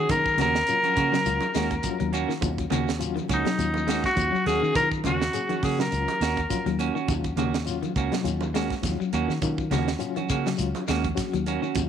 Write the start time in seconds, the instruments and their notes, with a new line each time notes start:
Already playing: clean electric guitar C#4 F#4, alto saxophone G#4
0.09 fingered electric bass D#3, reed electric piano F#3 C#4 G#4, alto saxophone A#4, kick, closed hi-hat, high conga, low conga, shekere
0.26 kick, shekere
0.37 fingered electric bass D#2, clean electric guitar C#3 A#3 C#4 F#4, snare, closed hi-hat, high conga, low conga, shekere
0.41 alto saxophone A#4
0.55 snare, shekere
0.67 reed electric piano F#3 C#4 F4, closed hi-hat, high conga, shekere
0.83 clean electric guitar C#4 F#4, closed hi-hat, high conga, shekere
0.96 fingered electric bass C#3, clean electric guitar A#3 C#4 F#4, kick, closed hi-hat, high conga, shekere
1.12 clean electric guitar F#3, snare, low conga, shekere
1.25 fingered electric bass C#2, reed electric piano F#3 C#4 F4, closed hi-hat, high conga, shekere
1.41 closed hi-hat, high conga, shekere
1.54 fingered electric bass D#2, clean electric guitar G#3 A#3 C#4 F#4, snare, closed hi-hat, shekere
1.71 kick, closed hi-hat, shekere
1.83 reed electric piano F#3 C#4 F4 A#5, kick, closed hi-hat, high conga, shekere
2.00 fingered electric bass D#2, clean electric guitar F#3, closed hi-hat, shekere
2.13 clean electric guitar A#3 C#4 F#4, closed hi-hat, shekere
2.29 clean electric guitar D#3, snare, shekere
2.41 fingered electric bass D#2, reed electric piano F#3 C#4 F4, kick, closed hi-hat, high conga, low conga, shekere
2.58 kick, closed hi-hat, shekere
2.70 fingered electric bass D#2, clean electric guitar C#3 A#3 C#4 F#4, closed hi-hat, high conga, low conga, shekere
2.88 snare, shekere
2.99 reed electric piano F#3 C#4 F4, closed hi-hat, high conga, shekere
3.16 clean electric guitar D#3, closed hi-hat, high conga, shekere
3.28 fingered electric bass C#2, clean electric guitar A#3 C#4 F#4, kick, closed hi-hat, high conga, shekere
3.34 alto saxophone D#4
3.45 clean electric guitar F#3, muted fingered electric bass stroke, snare, closed hi-hat, low conga, shekere
3.58 fingered electric bass D#2, reed electric piano F#3 C#4 F4, closed hi-hat, high conga, shekere
3.74 high conga, shekere
3.87 clean electric guitar G#3 A#3 C#4 F#4, snare, closed hi-hat, shekere
4.04 alto saxophone F#4, kick, snare, closed hi-hat, shekere
4.16 fingered electric bass D#2, reed electric piano F#3 C#4 F4, kick, closed hi-hat, high conga, shekere
4.32 clean electric guitar F#3, muted fingered electric bass stroke, shekere
4.46 fingered electric bass D#2, clean electric guitar A#3 C#4 F#4, alto saxophone G#4, snare, closed hi-hat, shekere
4.62 clean electric guitar D#3 C#4 F#4, fingered electric bass D#3, shekere
4.74 fingered electric bass D#3, reed electric piano F#3 C#4 F4, alto saxophone A#4, kick, closed hi-hat, high conga, low conga, shekere
4.92 kick, shekere
5.04 fingered electric bass D#2, clean electric guitar C#3 A#3 C#4 F#4, alto saxophone F#4, closed hi-hat, high conga, low conga, shekere
5.22 snare, shekere
5.33 reed electric piano F#3 C#4 G#4, closed hi-hat, high conga, shekere
5.49 clean electric guitar D#3 C#4 F#4, closed hi-hat, high conga, shekere
5.63 fingered electric bass C#3, clean electric guitar A#3 C#4 F#4, alto saxophone G#4, kick, open hi-hat, high conga, shekere
5.79 clean electric guitar F#3, alto saxophone A#4, snare, low conga, shekere
5.91 fingered electric bass C#2, reed electric piano F#3 C#4 F4, closed hi-hat, shekere
6.08 closed hi-hat, high conga, shekere
6.21 fingered electric bass D#2, clean electric guitar A#3 C#4 F#4, snare, closed hi-hat, shekere
6.37 kick, closed hi-hat, shekere
6.49 reed electric piano F#3 C#4 F4, kick, closed hi-hat, high conga, shekere
6.66 fingered electric bass D#2, clean electric guitar F#3, closed hi-hat, shekere
6.79 clean electric guitar A#3 C#4 F#4, closed hi-hat, shekere
6.95 clean electric guitar D#3 C#4 F#4, shekere
7.08 fingered electric bass D#2, reed electric piano F#3 C#4 F4, kick, closed hi-hat, high conga, low conga, shekere
7.24 kick, closed hi-hat, shekere
7.36 fingered electric bass D#2, clean electric guitar C#3 A#3 C#4 F#4, closed hi-hat, high conga, low conga, shekere
7.54 snare, shekere
7.65 reed electric piano F#3 C#4 F4, closed hi-hat, high conga, shekere
7.83 clean electric guitar D#3, closed hi-hat, high conga, shekere
7.96 fingered electric bass C#2, clean electric guitar A#3 C#4 F#4, kick, closed hi-hat, shekere
8.12 clean electric guitar F#3, snare, closed hi-hat, low conga, shekere
8.23 fingered electric bass D#2, reed electric piano F#3 C#4 F4, closed hi-hat, shekere
8.41 high conga, shekere
8.54 clean electric guitar G#3 A#3 C#4 F#4, snare, closed hi-hat, shekere
8.70 kick, snare, closed hi-hat, shekere
8.82 fingered electric bass D#2, reed electric piano F#3 C#4 F4, kick, snare, closed hi-hat, high conga, shekere
9.00 clean electric guitar F#3, muted fingered electric bass stroke, shekere
9.13 fingered electric bass D#2, clean electric guitar A#3 C#4 F#4, closed hi-hat, shekere
9.28 clean electric guitar D#3, fingered electric bass D#3, snare, shekere
9.41 fingered electric bass D#3, reed electric piano F#3 C#4 F4, kick, closed hi-hat, high conga, low conga, shekere
9.58 kick, shekere
9.71 fingered electric bass D#2, clean electric guitar C#3 A#3 C#4 F#4, snare, closed hi-hat, high conga, low conga, shekere
9.88 snare, shekere
9.99 reed electric piano F#3 C#4 F4, closed hi-hat, high conga, shekere
10.16 clean electric guitar D#3 C#4 F#4, closed hi-hat, high conga, shekere
10.29 fingered electric bass C#3, clean electric guitar A#3 C#4 F#4, kick, closed hi-hat, high conga, shekere
10.46 clean electric guitar F#3, snare, shekere
10.57 fingered electric bass C#2, reed electric piano F#3 C#4 F4, closed hi-hat, shekere
10.75 closed hi-hat, high conga, shekere
10.88 fingered electric bass D#2, clean electric guitar G#3 A#3 C#4 F#4, snare, closed hi-hat, shekere
11.04 kick, closed hi-hat, high conga, shekere
11.15 reed electric piano F#3 C#4 F#4, kick, snare, closed hi-hat, high conga, shekere
11.33 fingered electric bass D#2, clean electric guitar F#3, closed hi-hat, shekere
11.46 clean electric guitar A#3 C#4 F#4, closed hi-hat, shekere
11.62 clean electric guitar D#3 C#4 F#4, shekere
11.75 fingered electric bass D#2, reed electric piano F#3 C#4 F4, kick, closed hi-hat, high conga, low conga, shekere